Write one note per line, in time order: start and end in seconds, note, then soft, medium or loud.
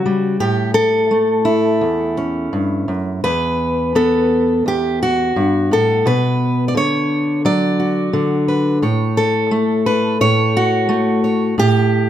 0.00 0.36 C#3 medium
0.00 0.40 F#4 loud
0.06 0.41 G3 medium
0.40 1.81 A2 medium
0.40 0.74 G4 medium
0.74 2.16 A4 loud
1.11 3.20 A3 medium
1.45 3.23 E4 medium
1.81 2.52 E2 medium
2.17 3.20 C#4 soft
2.53 2.88 G2 medium
2.88 3.24 F#2 medium
3.24 4.65 E2 medium
3.24 4.66 B4 medium
3.95 6.01 B3 medium
3.95 4.66 A4 medium
4.66 5.36 E2 medium
4.66 5.02 G4 medium
5.03 5.71 F#4 medium
5.36 5.71 G2 medium
5.71 6.06 A2 medium
5.71 6.06 A4 medium
6.06 6.75 B2 medium
6.06 6.68 B4 medium
6.68 6.75 D5 medium
6.75 8.12 D3 medium
6.75 7.45 C#5 loud
7.45 8.78 F#3 medium
7.45 8.48 D5 loud
7.80 8.78 F#4 soft
8.13 8.82 D3 medium
8.48 8.78 B4 soft
8.82 10.20 A2 medium
8.82 9.86 C#5 medium
9.17 10.55 A4 loud
9.51 10.88 A3 medium
9.86 10.20 B4 medium
10.21 11.57 A2 medium
10.21 11.23 C#5 loud
10.57 11.59 F#4 medium
10.89 11.54 A3 medium
11.24 11.54 C#5 soft
11.58 12.10 A2 medium
11.58 12.10 G4 loud